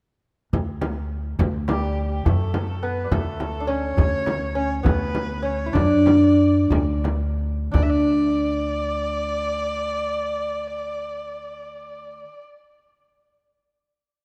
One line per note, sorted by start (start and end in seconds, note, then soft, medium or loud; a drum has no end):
0.53 1.35 D2 medium
0.53 tombak dum medium
0.53 frame drum medium
0.81 tombak tek medium
0.81 frame drum medium
1.39 2.21 D2 medium
1.39 tombak dum medium
1.39 frame drum medium
1.68 2.27 G3 medium
1.68 2.08 G4 medium
1.68 tombak tek medium
1.68 frame drum medium
1.83 tombak ka soft
2.11 2.27 G4 medium
2.25 3.08 F#2 medium
2.25 2.85 A3 medium
2.25 2.84 A4 medium
2.25 tombak dum medium
2.25 frame drum medium
2.54 tombak tek medium
2.54 frame drum medium
2.83 3.05 B3 medium
2.83 3.14 B4 medium
3.04 3.11 G3 medium
3.11 3.94 D2 medium
3.11 3.64 A3 medium
3.11 3.71 A4 medium
3.11 tombak dum medium
3.11 frame drum medium
3.40 tombak tek medium
3.40 frame drum medium
3.55 tombak ka soft
3.60 3.68 D4 medium
3.67 4.54 C#4 medium
3.67 4.56 C#5 medium
3.97 4.81 D2 medium
3.97 tombak dum medium
3.97 frame drum medium
4.26 tombak tek medium
4.26 frame drum medium
4.55 4.83 C#4 medium
4.55 4.78 C#5 medium
4.78 4.86 C#5 soft
4.83 5.71 D2 medium
4.83 5.42 B3 medium
4.83 5.46 B4 medium
4.83 tombak dum medium
4.83 frame drum medium
5.15 frame drum medium
5.29 tombak ka soft
5.42 5.67 C#4 medium
5.42 5.75 C#5 medium
5.66 5.74 E4 medium
5.73 6.66 F#2 medium
5.73 6.99 D4 medium
5.73 7.03 D5 medium
5.73 tombak dum medium
5.73 frame drum medium
6.06 tombak tek medium
6.06 frame drum medium
6.38 tombak ka soft
6.70 7.69 D2 medium
6.70 tombak dum medium
6.70 frame drum medium
6.87 tombak ka soft
7.04 tombak tek medium
7.04 frame drum medium
7.21 tombak ka soft
7.38 tombak ka soft
7.72 12.22 D2 medium
7.72 12.20 D4 medium
7.72 7.84 D5 medium
7.72 tombak dum medium
7.72 frame drum medium
7.83 7.92 E5 medium
7.90 12.43 D5 medium